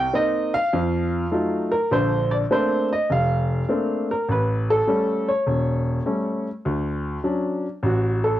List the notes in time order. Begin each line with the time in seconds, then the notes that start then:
Already playing: G5
0.13 A#3 C4 D#4 D#5
0.54 F5
0.73 F2
1.32 F#3 A3 D#4 F4
1.72 A#4
1.91 A#1 D3 C5
2.31 D5
2.51 A3 A#3 C4 D4 C5
2.93 D#5
3.10 F1 F5
3.69 A3 A#3 C4 D4
4.11 A#4
4.28 A1 B4
4.70 A4
4.87 G3 A3 C#4
5.28 C#5
5.46 E1
6.05 G3 A3 C#4
6.65 D2
7.24 F#3 C#4 D4
7.83 A1 F#4
8.24 A4